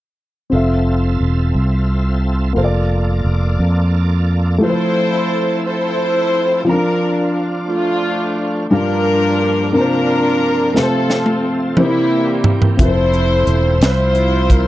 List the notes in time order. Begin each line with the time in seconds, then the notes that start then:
0.50 F1 C4 F4 A4 E5
0.55 E5
1.20 E1
1.55 C2
2.53 F1 A#3 F4 A4 C5
2.58 A4 C5
2.64 D5
3.24 F1
3.59 F2
4.58 F3 A3 E4
4.63 F3 C4 E4 A4 B4 C5
4.70 C5
5.67 E4 A4 C5
6.65 F3 C4 D4 F4
6.69 D4 A#4 A#5
7.70 A3 D4 F4
8.71 G2 F3 G3 A#3 D4 F4 G4 A#4
9.69 A#3 A4
9.73 C3 F3 C4 D4 F4 A#4
9.81 C5
10.74 C3 F3 A3 C4 F4 G4 A4 B4, snare
10.78 C4 F4 A4
10.83 A4 C5
11.10 snare
11.26 high tom
11.77 C3 E3 G3 A#3 C4 E4 G4 C5, mid tom
11.82 E4
12.44 floor tom
12.62 floor tom
12.77 F1 F3 C4 E4 G4 A4 C5 E5, kick, closed hi-hat
12.82 F3 A#4 C5
12.87 C5
13.13 closed hi-hat
13.47 E1, closed hi-hat
13.81 C2 E4 F4 C5, snare, closed hi-hat
14.15 closed hi-hat
14.50 A#4, kick, closed hi-hat